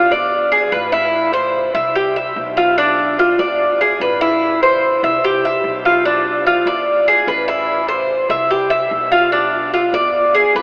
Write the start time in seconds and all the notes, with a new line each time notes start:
Already playing: F4
0.11 E2 D5
0.52 G#4
0.72 A1 B4
0.92 E4
1.33 C5
1.74 C2 E5
1.96 G4
2.16 E5
2.36 B1
2.57 F4
2.78 D4
3.19 F4
3.39 E2 D5
3.81 G#4
4.00 A1 B4
4.21 E4
4.63 C5
5.03 C2 E5
5.24 G4
5.45 E5
5.64 B1
5.85 F4
6.05 D4
6.47 F4
6.66 E2 D5
7.08 G#4
7.27 A1 B4
7.48 E4
7.89 C5
8.29 C2 E5
8.51 G4
8.70 E5
8.91 B1
9.12 F4
9.32 D4
9.74 F4
9.93 E2 D5
10.35 G#4
10.55 A1 B4